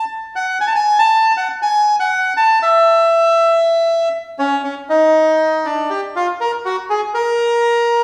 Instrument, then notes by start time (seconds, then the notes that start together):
bandoneon
0.36 F#5
0.61 G#5
0.67 A5
0.76 G#5
0.99 A5
1.37 F#5
1.62 G#5
2.00 F#5
2.37 A5
2.63 E5
4.39 C#4
4.64 C#4
4.89 D#4
5.65 D4
5.90 G4
6.16 F4
6.41 A#4
6.65 F#4
6.90 G#4
7.14 A#4